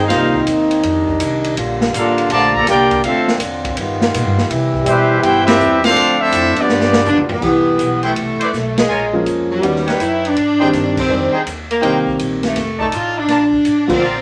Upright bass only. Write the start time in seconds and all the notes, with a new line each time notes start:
0.10 C2
0.47 D#2
0.84 F2
1.20 C2
1.57 A#1
1.94 A1
2.30 A#1
2.67 C2
3.04 D2
3.41 E2
3.77 G2
4.14 A#2
4.25 G2
4.37 F2
4.50 C3
4.86 B2
5.23 G2
5.59 E2
5.96 D2
6.33 F2
6.70 G2
7.06 D2
7.42 C2
7.79 B1
8.17 C2
8.41 muted upright bass stroke
8.53 B1
8.89 A#1
9.27 F2
9.63 D#2
9.99 F#2
10.37 G#2
10.73 G2
11.09 F2
11.46 D#2
11.83 C2
12.19 A#1
12.56 F1
12.93 A1
13.29 A#1
13.65 A1
14.01 A#1